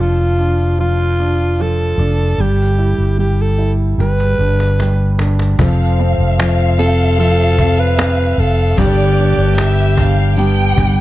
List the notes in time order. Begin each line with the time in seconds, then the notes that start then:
Already playing: F1 D4
0.00 F3 F4
0.39 D4
0.79 F3 F4
1.20 D4
1.60 F3 A4
1.98 F1 D4
2.38 G1 G3 G4
2.78 E4
2.98 G1
3.18 G3 G4
3.41 A4
3.58 E4
3.98 G1 G3 B4, cajon slap
4.20 cajon slap
4.39 G1 D4
4.60 cajon slap
4.79 G3, cajon slap
5.18 D4, cajon slap
5.39 cajon slap
5.59 F1 F3 C4 A4 F5, cajon bass
5.99 C4
6.18 F1
6.38 F3 C4 A4, cajon slap
6.78 C4 A4
7.18 F3 C4 A4
7.57 C4 A4, cajon bass
7.79 B4
7.98 C4, cajon slap
8.38 F1 A4
8.76 G1 G2 D3 G3 B3 D4 G4 D5, cajon bass
9.19 D4
9.37 G1
9.57 G3 E5, cajon slap
9.97 D4 F5, cajon bass
10.36 G2 D3 G3 B3 D4 G4 G5
10.77 G1 G3 B3 D4 G4, cajon bass